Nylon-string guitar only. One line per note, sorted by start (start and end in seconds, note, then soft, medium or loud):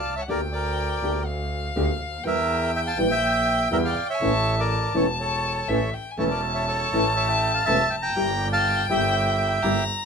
0.28 0.37 D3 medium
0.28 0.37 A#3 medium
0.28 0.38 D4 medium
0.28 0.38 G4 medium
1.02 1.11 D3 medium
1.02 1.12 A#3 medium
1.02 1.12 D4 medium
1.02 1.12 G4 medium
1.76 1.85 D3 medium
1.76 1.85 A#3 medium
1.76 1.85 D4 medium
1.76 1.85 G4 medium
2.24 2.33 E3 medium
2.24 2.34 G3 medium
2.24 2.34 E4 medium
2.97 3.07 E3 medium
2.97 3.07 G3 medium
2.97 3.07 E4 medium
3.71 3.80 E3 medium
3.71 3.81 G3 medium
3.71 3.81 E4 medium
4.21 4.30 E3 medium
4.21 4.30 A3 medium
4.21 4.30 C#4 medium
4.21 4.31 E4 medium
4.94 5.04 E3 medium
4.94 5.04 A3 medium
4.94 5.04 C#4 medium
4.94 5.04 E4 medium
5.68 5.78 E3 medium
5.68 5.78 A3 medium
5.68 5.78 C#4 medium
5.68 5.78 E4 medium
6.18 6.27 E3 medium
6.18 6.27 A3 medium
6.18 6.27 C#4 medium
6.18 6.28 E4 medium
6.93 7.02 E3 medium
6.93 7.02 A3 medium
6.93 7.02 C#4 medium
6.93 7.02 E4 medium
7.67 7.76 E3 medium
7.67 7.76 A3 medium
7.67 7.76 C#4 medium
7.67 7.76 E4 medium
8.16 8.25 G3 medium
8.16 8.25 A#3 medium
8.16 8.25 E4 medium
8.16 8.25 G4 medium
8.90 8.98 G3 medium
8.90 8.98 A#3 medium
8.90 8.99 E4 medium
8.90 8.99 G4 medium
9.63 9.72 G3 medium
9.63 9.72 A#3 medium
9.63 9.72 E4 medium
9.63 9.73 G4 medium